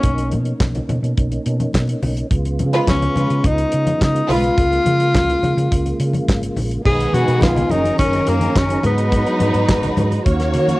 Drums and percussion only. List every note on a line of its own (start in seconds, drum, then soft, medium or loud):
0.03 kick loud
0.03 closed hi-hat medium
0.18 closed hi-hat soft
0.18 muted conga soft
0.32 closed hi-hat medium
0.32 high conga medium
0.45 closed hi-hat soft
0.60 kick loud
0.60 snare loud
0.60 clap medium
0.60 muted conga soft
0.60 high conga medium
0.75 closed hi-hat soft
0.75 muted conga soft
0.75 low conga medium
0.89 closed hi-hat soft
0.89 high conga medium
0.89 low conga medium
1.04 closed hi-hat soft
1.17 kick loud
1.17 closed hi-hat medium
1.32 closed hi-hat soft
1.32 muted conga soft
1.46 closed hi-hat medium
1.60 closed hi-hat soft
1.60 high conga medium
1.73 kick medium
1.73 snare loud
1.73 clap medium
1.73 muted conga soft
1.88 closed hi-hat soft
1.88 muted conga soft
2.03 open hi-hat medium
2.03 low conga medium
2.17 closed hi-hat medium
2.31 kick loud
2.31 closed hi-hat medium
2.31 muted conga soft
2.45 closed hi-hat soft
2.45 muted conga soft
2.59 closed hi-hat medium
2.59 high conga medium
2.73 closed hi-hat soft
2.87 kick loud
2.87 snare loud
2.87 clap medium
2.87 muted conga soft
2.87 high conga medium
3.02 closed hi-hat soft
3.02 low conga medium
3.16 closed hi-hat medium
3.16 high conga medium
3.16 low conga medium
3.30 closed hi-hat soft
3.44 kick loud
3.44 closed hi-hat medium
3.44 muted conga soft
3.58 closed hi-hat soft
3.72 closed hi-hat medium
3.87 closed hi-hat medium
3.87 high conga medium
4.01 kick medium
4.01 snare loud
4.01 clap medium
4.14 closed hi-hat medium
4.14 muted conga soft
4.29 open hi-hat medium
4.29 low conga medium
4.44 closed hi-hat soft
4.58 kick loud
4.58 closed hi-hat medium
4.72 closed hi-hat soft
4.72 muted conga soft
4.86 closed hi-hat medium
4.86 high conga medium
5.00 closed hi-hat soft
5.14 kick loud
5.14 snare loud
5.14 clap medium
5.14 muted conga soft
5.14 high conga medium
5.29 closed hi-hat soft
5.29 muted conga soft
5.29 low conga medium
5.43 closed hi-hat soft
5.43 high conga medium
5.43 low conga medium
5.57 closed hi-hat soft
5.57 high conga medium
5.72 kick loud
5.72 closed hi-hat medium
5.72 muted conga soft
5.86 closed hi-hat soft
5.86 muted conga soft
6.00 closed hi-hat medium
6.13 closed hi-hat soft
6.13 high conga medium
6.29 kick loud
6.29 snare loud
6.29 clap medium
6.42 closed hi-hat medium
6.42 muted conga soft
6.56 open hi-hat medium
6.56 low conga medium
6.71 closed hi-hat medium
6.85 kick loud
6.85 crash loud
7.00 closed hi-hat medium
7.13 closed hi-hat medium
7.13 high conga medium
7.28 closed hi-hat soft
7.41 kick loud
7.41 snare loud
7.41 clap medium
7.41 muted conga soft
7.41 high conga medium
7.56 closed hi-hat soft
7.56 muted conga soft
7.56 low conga medium
7.70 closed hi-hat medium
7.70 high conga medium
7.70 low conga medium
7.84 closed hi-hat medium
7.84 high conga medium
7.98 kick loud
7.98 closed hi-hat medium
7.98 muted conga soft
8.13 closed hi-hat soft
8.13 muted conga soft
8.27 closed hi-hat medium
8.41 closed hi-hat medium
8.41 high conga medium
8.56 kick loud
8.56 snare loud
8.56 clap medium
8.69 closed hi-hat medium
8.69 muted conga soft
8.83 closed hi-hat medium
8.83 low conga medium
8.98 closed hi-hat medium
9.12 kick loud
9.12 closed hi-hat medium
9.12 muted conga soft
9.26 closed hi-hat soft
9.26 muted conga soft
9.40 closed hi-hat medium
9.40 high conga medium
9.54 closed hi-hat soft
9.68 kick loud
9.68 snare loud
9.68 clap loud
9.68 high conga medium
9.83 closed hi-hat soft
9.83 muted conga soft
9.83 low conga medium
9.97 closed hi-hat medium
9.97 high conga medium
9.97 low conga medium
10.11 closed hi-hat medium
10.11 high conga medium
10.26 kick loud
10.26 closed hi-hat medium
10.26 muted conga soft
10.40 snare soft
10.40 closed hi-hat soft
10.54 closed hi-hat medium
10.68 closed hi-hat soft
10.68 high conga medium